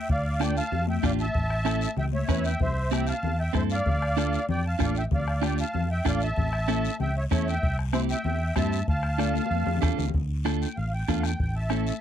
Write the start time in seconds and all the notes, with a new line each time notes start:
0.09 D2 D5 F5, bombo low, long guiro
0.40 D4 F4 A4 D5 G5, bombo rim, high conga, short guiro
0.57 F5 A5, short guiro
0.72 F2, low conga, long guiro
0.87 E5 G5, high conga
1.03 A1 D4 F4 G4 D5 F5, bombo low, bombo rim, high conga, short guiro
1.19 E5 A5, short guiro
1.34 A1, bombo low, long guiro
1.50 bombo rim
1.65 C#4 E4 A4, bombo rim, high conga, short guiro
1.81 short guiro
1.96 C#2 E5 G5, low conga, long guiro
2.13 C#5 E5, high conga
2.28 E2 C#4 E4 B4 C#5 E5, bombo low, bombo rim, high conga, low conga, short guiro
2.44 E5 G5, short guiro
2.60 C2 C5 E5, bombo low, low conga, long guiro
2.91 C4 E4 G4 E5 G5, bombo rim, high conga, short guiro
3.07 F5 A5, short guiro
3.23 E2, low conga, long guiro
3.39 E5 G5
3.53 G2 C4 E4 A4 C5 E5, bombo low, bombo rim, high conga, low conga, short guiro
3.70 D5 F5, short guiro
3.86 D2, bombo low, low conga, long guiro
4.02 bombo rim
4.17 D4 F4 A4, bombo rim, high conga, short guiro
4.33 short guiro
4.49 F2 D5 G5, low conga, long guiro
4.66 F5 A5
4.79 A1 D4 F4 A4 F5, bombo low, bombo rim, high conga, short guiro
4.83 D5
4.95 E5 G5, short guiro
5.11 D2 D5 F5, bombo low, low conga, long guiro
5.28 bombo rim
5.41 D4 F4 G4 D5 G5, bombo rim, high conga, short guiro
5.58 F5 A5, short guiro
5.74 F2, low conga, long guiro
5.91 E5 G5
6.05 A1 D4 F4 A4 D5 F5, bombo low, bombo rim, high conga, short guiro
6.20 E5 A5, short guiro
6.36 A1, bombo low, low conga, long guiro
6.53 bombo rim
6.68 C#4 E4 A4, bombo rim, high conga, short guiro
6.85 short guiro
7.00 C#2 E5 G5, low conga, long guiro
7.17 C#5 E5
7.31 E2 C#4 E4 A4 C#5 E5, bombo low, bombo rim, high conga, short guiro
7.47 E5 G5, short guiro
7.63 C2, bombo low, long guiro
7.79 bombo rim
7.93 C4 E4 G4 C5 E5, bombo rim, high conga, short guiro
8.09 E5 G5, short guiro
8.24 E2, low conga, long guiro
8.56 G2 C4 E4 G4 E5 A5, bombo low, bombo rim, high conga, low conga, short guiro
8.72 short guiro
8.88 D2 F5 A5, bombo low, long guiro
9.03 bombo rim
9.18 D4 F4 A4 D5, bombo rim, high conga, short guiro
9.35 F5, high conga, short guiro
9.46 high conga
9.51 F2 F5, long guiro
9.56 high conga
9.66 F2, low conga
9.77 F5, low conga
9.82 E2 D4 F4 A4, bombo low, bombo rim, short guiro
9.87 low conga
9.98 D2, low conga, short guiro
10.08 low conga
10.14 D2, bombo low, high conga, long guiro
10.45 D4 F4 A4, bombo rim, high conga, short guiro
10.62 G5, short guiro
10.77 A1 F5, high conga, long guiro
10.93 G5
11.08 E2 D4 F4 A4 F5, bombo low, bombo rim, high conga, short guiro
11.19 F#5
11.23 G5, bombo rim, short guiro
11.40 A1 G5, bombo low, high conga, long guiro
11.56 E5 A5
11.70 C#4 E4 A4, bombo rim, high conga, short guiro
11.87 short guiro